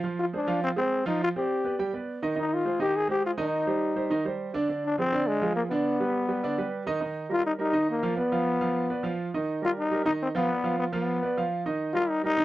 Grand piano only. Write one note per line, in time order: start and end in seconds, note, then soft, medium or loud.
0.04 0.28 F3 medium
0.04 0.28 F4 medium
0.04 0.28 F5 medium
0.33 0.45 G#3 medium
0.33 0.45 G#4 medium
0.33 0.45 C5 medium
0.47 0.71 F3 medium
0.47 0.72 F4 medium
0.47 0.71 F5 medium
0.76 1.00 G#3 medium
0.76 1.00 G#4 medium
0.76 1.01 C5 medium
1.06 1.30 F3 medium
1.06 1.30 F4 medium
1.06 1.30 F5 medium
1.36 1.59 C4 medium
1.36 1.60 C5 medium
1.36 1.60 D5 medium
1.64 1.76 B3 medium
1.64 1.76 B4 medium
1.64 1.77 D5 medium
1.79 1.91 G3 medium
1.79 1.91 G4 medium
1.79 1.91 G5 medium
1.93 2.17 B3 medium
1.93 2.17 B4 medium
1.93 2.17 D5 medium
2.23 2.34 D#3 loud
2.23 2.34 D#4 medium
2.23 2.35 D#5 medium
2.35 2.60 D#3 medium
2.35 2.60 D#4 medium
2.35 2.60 D#5 medium
2.65 2.77 G#3 medium
2.65 2.77 G#4 medium
2.65 2.78 C5 medium
2.79 3.04 D#3 medium
2.79 3.04 D#4 medium
2.79 3.04 D#5 medium
3.08 3.33 G#3 medium
3.08 3.33 G#4 medium
3.08 3.33 C5 medium
3.37 3.62 D#3 medium
3.37 3.62 D#4 loud
3.37 3.62 D#5 medium
3.67 3.91 G3 medium
3.67 3.91 G4 medium
3.67 3.91 C5 medium
3.96 4.08 G3 medium
3.96 4.08 G4 medium
3.96 4.09 C5 medium
4.10 4.22 D#3 medium
4.10 4.23 D#4 medium
4.10 4.23 D#5 medium
4.25 4.49 G3 medium
4.25 4.49 G4 medium
4.25 4.50 C5 medium
4.54 4.66 D3 medium
4.54 4.66 D4 loud
4.54 4.66 D5 medium
4.69 4.93 D3 medium
4.69 4.93 D4 medium
4.69 4.93 D5 medium
4.98 5.10 F3 medium
4.98 5.10 F4 medium
4.98 5.10 G#4 medium
5.12 5.36 D3 medium
5.12 5.36 D4 medium
5.12 5.37 D5 medium
5.41 5.65 F3 medium
5.41 5.65 F4 medium
5.41 5.66 G#4 medium
5.71 5.94 D3 medium
5.71 5.95 D4 medium
5.71 5.95 D5 medium
6.00 6.24 G3 medium
6.00 6.24 G4 medium
6.00 6.24 B4 medium
6.29 6.41 G3 medium
6.29 6.41 G4 medium
6.29 6.41 B4 medium
6.43 6.55 D3 medium
6.43 6.56 D4 medium
6.43 6.56 D5 medium
6.58 6.82 G3 medium
6.58 6.82 G4 medium
6.58 6.82 B4 medium
6.87 6.99 D#3 medium
6.87 6.99 D#4 medium
6.87 6.99 D#5 loud
7.01 7.25 D#3 medium
7.01 7.25 D#4 medium
7.01 7.25 D#5 medium
7.29 7.54 G3 medium
7.29 7.54 G4 medium
7.29 7.54 A#4 medium
7.59 7.71 G3 medium
7.59 7.71 G4 medium
7.59 7.71 A#4 medium
7.72 7.97 D#3 medium
7.72 7.97 D#4 medium
7.72 7.97 D#5 medium
8.03 8.15 F3 medium
8.03 8.15 F4 medium
8.03 8.15 F5 medium
8.17 8.29 B3 medium
8.17 8.29 B4 medium
8.17 8.29 D5 medium
8.32 8.56 F3 medium
8.32 8.56 F4 medium
8.32 8.56 F5 medium
8.61 8.85 F3 medium
8.61 8.85 F4 medium
8.61 8.85 F5 medium
8.90 9.02 B3 medium
8.90 9.02 B4 medium
8.90 9.02 D5 medium
9.03 9.27 F3 medium
9.03 9.28 F4 medium
9.03 9.28 F5 medium
9.34 9.58 D#3 medium
9.34 9.58 D#4 medium
9.34 9.58 D#5 medium
9.62 9.86 G3 medium
9.62 9.86 G4 medium
9.62 9.86 A#4 medium
9.91 10.03 G3 medium
9.91 10.03 G4 medium
9.91 10.04 A#4 medium
10.05 10.29 D#3 medium
10.05 10.30 D#4 medium
10.05 10.30 D#5 medium
10.35 10.47 F3 medium
10.35 10.47 F4 loud
10.35 10.47 F5 medium
10.49 10.61 B3 medium
10.49 10.61 B4 medium
10.49 10.61 D5 medium
10.64 10.88 F3 medium
10.64 10.88 F4 medium
10.64 10.88 F5 medium
10.92 11.16 F3 medium
10.92 11.17 F4 medium
10.92 11.17 F5 medium
11.22 11.34 B3 medium
11.22 11.34 B4 medium
11.22 11.35 D5 medium
11.37 11.61 F3 medium
11.37 11.61 F4 medium
11.37 11.61 F5 medium
11.66 11.89 D#3 medium
11.66 11.90 D#4 medium
11.66 11.90 D#5 medium
11.94 12.18 G3 medium
11.94 12.18 G4 medium
11.94 12.19 A#4 medium
12.24 12.36 G3 medium
12.24 12.36 G4 medium
12.24 12.36 A#4 medium
12.37 12.45 D#3 medium
12.37 12.45 D#4 medium
12.37 12.45 D#5 medium